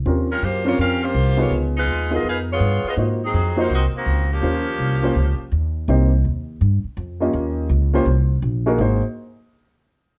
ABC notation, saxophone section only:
X:1
M:4/4
L:1/8
Q:"Swing" 1/4=165
K:Ebdor
V:1 name="Saxophone section"
z [=G,DFB] [B,F=Gc] [B,FGd] [DGBf] [B,FGc]2 [B,FGd] | z [A,EF_c]2 [_CFAe] [EAcf] [CFAd]2 [CFAe] | z [G,CEA]2 [B,EGc] [CGBe] [E,B,CG]2 [F,B,D=G]- | [F,B,D=G]6 z2 |
z8 | z8 | z8 |]